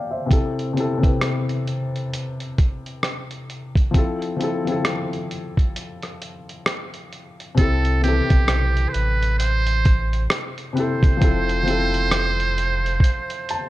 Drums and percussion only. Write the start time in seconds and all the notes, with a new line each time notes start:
0.31 kick, closed hi-hat
0.59 closed hi-hat
0.77 closed hi-hat
1.03 kick, closed hi-hat
1.21 cross-stick, closed hi-hat
1.49 closed hi-hat
1.67 closed hi-hat
1.96 closed hi-hat
2.14 closed hi-hat
2.40 closed hi-hat
2.58 kick, closed hi-hat
2.86 closed hi-hat
3.03 cross-stick, closed hi-hat
3.31 closed hi-hat
3.50 closed hi-hat
3.75 kick, closed hi-hat
3.94 kick, closed hi-hat
4.22 closed hi-hat
4.41 closed hi-hat
4.67 closed hi-hat
4.85 cross-stick, closed hi-hat
5.13 closed hi-hat
5.31 closed hi-hat
5.57 kick, closed hi-hat
5.76 closed hi-hat
6.02 cross-stick, closed hi-hat
6.22 closed hi-hat
6.49 closed hi-hat
6.66 cross-stick, closed hi-hat
6.94 closed hi-hat
7.13 closed hi-hat
7.40 closed hi-hat
7.58 kick, closed hi-hat
7.85 closed hi-hat
8.04 closed hi-hat
8.30 kick, closed hi-hat
8.48 cross-stick, closed hi-hat
8.77 closed hi-hat
8.94 closed hi-hat
9.23 closed hi-hat
9.40 closed hi-hat
9.67 closed hi-hat
9.85 kick, closed hi-hat
10.13 closed hi-hat
10.30 cross-stick, closed hi-hat
10.58 closed hi-hat
10.77 closed hi-hat
11.03 kick, closed hi-hat
11.21 kick, closed hi-hat
11.49 closed hi-hat
11.68 closed hi-hat
11.94 closed hi-hat
12.11 cross-stick, closed hi-hat
12.40 closed hi-hat
12.58 closed hi-hat
12.86 closed hi-hat
13.00 kick, closed hi-hat
13.30 closed hi-hat
13.49 closed hi-hat